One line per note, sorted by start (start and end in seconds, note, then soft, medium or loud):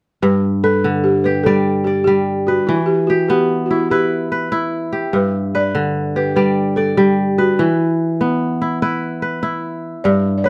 0.22 2.57 G2 medium
0.22 0.65 B4 medium
0.64 1.06 A4 medium
0.64 1.87 B4 medium
0.84 2.74 D3 medium
1.04 1.25 G4 medium
1.24 2.67 G4 medium
1.24 1.46 B4 medium
1.44 2.06 G3 medium
1.44 1.87 A4 medium
1.44 1.86 D5 medium
1.84 2.03 G4 medium
1.84 2.98 D5 medium
2.04 2.74 G3 medium
2.04 2.48 G4 medium
2.47 2.69 F#4 medium
2.47 3.71 B4 medium
2.67 5.03 E3 medium
2.67 2.72 E4 medium
2.74 2.76 E4 medium
2.74 2.87 E4 medium
2.86 3.09 G4 medium
3.07 3.29 F#4 medium
3.07 4.51 G4 medium
3.28 5.16 B3 medium
3.28 3.66 G4 medium
3.66 3.71 F#4 medium
3.71 3.91 E4 medium
3.71 3.90 E4 medium
3.90 4.51 E4 medium
3.90 4.69 G4 medium
3.90 4.31 B4 medium
4.32 5.54 B4 medium
4.52 6.09 E4 medium
4.93 6.16 G4 medium
5.13 7.47 G2 medium
5.13 5.57 B4 medium
5.55 6.78 B4 medium
5.55 5.93 D5 loud
5.75 7.65 D3 medium
6.16 7.57 G4 medium
6.16 6.35 B4 medium
6.36 6.96 G3 medium
6.36 6.79 B4 medium
6.36 6.77 D5 medium
6.76 6.98 A4 medium
6.76 7.88 D5 medium
6.97 7.65 G3 medium
6.97 7.40 G4 medium
7.38 7.60 F#4 medium
7.38 8.61 B4 medium
7.59 9.93 E3 medium
7.59 8.78 E4 medium
8.21 10.07 B3 medium
8.62 8.82 E4 medium
8.82 9.42 E4 medium
8.82 9.22 B4 medium
9.22 10.45 B4 medium
9.43 10.49 E4 medium
10.04 10.49 G2 medium
10.04 10.36 D5 medium
10.38 10.45 D5 medium
10.44 10.49 B4 medium
10.44 10.49 C#5 medium